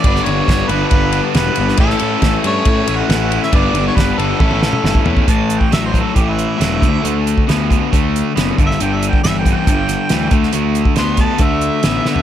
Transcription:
<<
  \new Staff \with { instrumentName = "Harmonica" } { \time 4/4 \key a \mixolydian \tempo 4 = 137 d''8 cis''4 b'8 b'4 b'4 | a'4. cis''4~ cis''16 fis''4 e''16 | d''8. cis''16 b'8 a'2 r8 | \tuplet 3/2 { a''4 g''8 e''8 c''8 a'8 g'8 e'4~ } e'4~ |
e'8 r2 r8 \tuplet 3/2 { r4 e''8 } | \tuplet 3/2 { g''8 e''8 g''8 e''8 g''8 g''8~ } g''4. r8 | r4 c'''8 a''8 e''2 | }
  \new Staff \with { instrumentName = "Distorted electric guitar" } { \clef bass \time 4/4 \key a \mixolydian <g, d g b d'>8 <g b d'>8 <g, d g b d'>4. <g b d'>8 <d g b d'>8 <g b d'>8 | <a, e a cis' e'>8 <a cis' e'>8 <a, e a cis' e'>4. <a cis' e'>8 <e a cis' e'>8 <a cis' e'>8 | <g, d g b d'>8 <g b d'>8 <g, d g b d'>4 <a, e a cis' e'>8 <a cis' e'>8 <e a cis' e'>8 <a cis' e'>8 | <a, e>4 <a, fis>8 <a, fis>8 <a, e>4 <a, fis>8 <d a>8 |
<d a>4 <d b>8 <d b>8 <d a>4 <d b>8 <g, d>8 | <g, d>4 <g, e>8 <g, e>8 <g, d>4 <g, e>8 <d a>8 | <d a>4 <d b>8 <d b>8 <d a>4 <d b>8 <d b>8 | }
  \new Staff \with { instrumentName = "Overdriven electric guitar" } { \clef bass \time 4/4 \key a \mixolydian <g b d' b'>4. <g b d' b'>2~ <g b d' b'>8 | <a, a cis' e' a'>4. <a, a cis' e' a'>2~ <a, a cis' e' a'>8 | <g b d' b'>4. <g b d' b'>8 <a, a cis' e' a'>4. <a, a cis' e' a'>8 | <a, e>4 <a, fis>8 <a, fis>8 <a, e>4 <a, fis>8 <d a>8 |
<d a>4 <d b>8 <d b>8 <d a>4 <d b>8 <g, d>8 | <g, d>4 <g, e>8 <g, e>8 <g, d>4 <g, e>8 <d a>8 | <d a>4 <d b>8 <d b>8 <d a>4 <d b>8 <d b>8 | }
  \new Staff \with { instrumentName = "Picked electric bass" } { \clef bass \time 4/4 \key a \mixolydian g,,8 g,,8 g,,8 g,,8 g,,4 e,,8 g,,8 | a,,8 a,8 a,,8 g,8 a,8 a,,8 a,,4 | g,,8 g,,8 g,,8 g,,8 a,,4 g,,8 e,8 | a,,4 a,,4 a,,4 e,,8 d,8 |
d,4 d,4 d,4 fis,,8 g,,8 | g,,4 g,,4 g,,4 d,8 d,8 | d,4 d,4 d,4 a,,8 d8 | }
  \new DrumStaff \with { instrumentName = "Drums" } \drummode { \time 4/4 <bd cymr>16 sn16 cymr8 <bd cymr sn>8 cymr8 <bd cymr>8 cymr8 <cymr sn>8 cymr16 sn16 | <bd cymr>16 sn16 cymr8 <bd cymr sn>8 cymr8 <bd cymr>8 cymr8 <cymr sn>8 cymr16 sn16 | <bd cymr>8 cymr8 <bd cymr sn>8 cymr8 <bd tommh>16 tommh16 sn16 toml16 sn16 bd16 tomfh16 bd16 | <hh bd>8 hh16 bd16 <hh sn>8 <hh bd>8 <hh bd>8 hh8 <hh sn>8 <hh bd>8 |
hh8 hh16 bd16 <hh sn>8 <hh bd>8 <hh bd>8 hh8 <hh sn>8 <hh bd>16 sn16 | hh8 hh16 bd16 <hh sn>8 <hh bd>8 <hh bd>8 <hh sn>8 <hh sn>8 <hh bd>16 sn16 | hh8 hh16 bd16 <hh sn>8 <hh bd>8 <hh bd>8 hh8 <hh sn>8 sn16 tomfh16 | }
>>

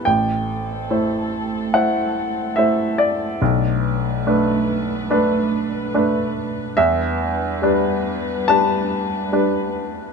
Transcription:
<<
  \new Staff \with { instrumentName = "Grand piano" } { \time 4/4 \key e \minor \tempo 4 = 71 << { g''2 fis''4 e''8 d''8~ | d''2~ d''8 r4. | e''2 a''2 | } \\ { a,,4 <a e' c''>4 <a e' c''>4 <a e' c''>4 | b,,4 <a d' b'>4 <a d' b'>4 <a d' b'>4 | e,4 <g d' b'>4 <g d' b'>4 <g d' b'>4 | } >> }
  \new Staff \with { instrumentName = "String section" } { \time 4/4 \key e \minor <a c' a'>1 | <a d' b'>1 | <g d' b'>1 | }
>>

